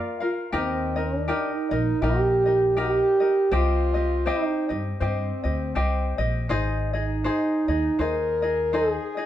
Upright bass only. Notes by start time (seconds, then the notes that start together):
0.53 D#2
1.71 A#1
2.02 A#1
3.52 C2
4.70 G2
5.01 G2
5.44 D2
5.76 C2
6.18 A#1
6.50 G#1
7.68 D#2
7.99 D#2